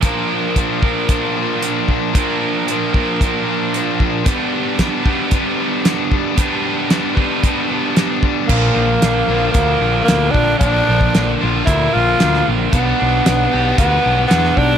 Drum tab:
CC |----------------|----------------|----------------|----------------|
HH |x---x---x---x---|x---x---x---x---|x---x---x---x---|x---x---x---x---|
SD |----------------|----------------|----o-------o---|----o-------o---|
BD |o---o-o-o-----o-|o-----o-o-----o-|o---o-o-o-----o-|o-----o-o-----o-|

CC |x---------------|----------------|----------------|
HH |----x---x---x---|x---x---x---x---|x---x---x---x---|
SD |----o-------o---|----o-------oo--|----o-------oo--|
BD |o-------o-----o-|o--o----o-------|o-------o-----o-|